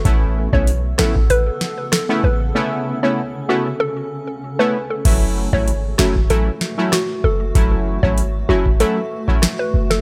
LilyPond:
<<
  \new Staff \with { instrumentName = "Synth pluck" } { \time 4/4 \key fis \minor \tempo 4 = 96 r8. cis''16 r8 a'16 r16 b'8. r16 a'16 r16 b'16 r16 | r8. cis''16 r8 fis'16 r16 a'8. r8 b'16 r16 a'16 | r8. cis''16 r8 fis'16 r16 a'8. r16 fis'16 r16 a'16 r16 | r8. cis''16 r8 fis'16 r16 a'8. r8 b'16 r16 a'16 | }
  \new Staff \with { instrumentName = "Synth stab" } { \time 4/4 \key fis \minor <a b cis' e'>8. <a b cis' e'>16 r8 <a b cis' e'>16 r4. <a b cis' e'>16 r8 | <a b cis' e'>8. <a b cis' e'>16 r8 <a b cis' e'>16 r4. <a b cis' e'>16 r8 | <fis a cis' e'>8. <fis a cis' e'>16 r8 <fis a cis' e'>16 r16 <fis a cis' e'>16 r8 <fis a cis' e'>16 r4 | <fis a cis' e'>8. <fis a cis' e'>16 r8 <fis a cis' e'>16 r16 <fis a cis' e'>16 r8 <fis a cis' e'>16 r4 | }
  \new Staff \with { instrumentName = "Ambient pad" } { \time 4/4 \key fis \minor << { <cis a'>1~ | <cis a'>1 | <e fis'>1~ | <e fis'>1 | } \\ { b1 | cis'1 | a1~ | a1 | } >> }
  \new Staff \with { instrumentName = "808-style bass" } { \clef bass \time 4/4 \key fis \minor a,,8. b,,8. a,,8 r4. a,,8 | r1 | fis,,8. gis,,8. fis,,8 r4. fis,,8 | fis,,8. gis,,8. fis,,8 r4. fis,,8 | }
  \new DrumStaff \with { instrumentName = "Drums" } \drummode { \time 4/4 <hh bd>8. bd16 hh8 <ss sn>16 bd16 <hh bd>8 sn8 <hh ss sn>4 | r4 r4 r4 r4 | <cymc hh bd>8. bd16 hh8 <ss sn>16 bd16 <hh bd>8 sn8 <hh ss sn>4 | <hh bd>8. bd16 hh8. bd16 hh8. bd16 <hh ss sn>8. sn16 | }
>>